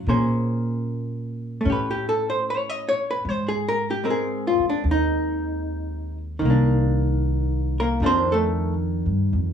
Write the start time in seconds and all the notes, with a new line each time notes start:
0.07 A#2 A#3 C#4 G#4 C5
1.61 A3
1.65 A2 C#4
1.70 G4 B4
1.91 G4
2.09 A4
2.30 C5
2.50 C#5
2.70 D#5
2.89 C#5
3.11 B4
3.25 G#2 C5
3.48 G#4
3.69 A#4
3.91 G4
4.04 G#3 C4 A#4
4.10 G#4
4.47 F4
4.59 muted upright bass stroke
4.70 D4
4.84 D#2
4.91 D#4
6.39 C2 D#3
6.45 A#3
6.50 D4
7.80 A#3 A#4
8.00 F2 D#3 A3
8.04 C4 D4 C5
8.32 A3 A4
9.06 G2
9.33 F2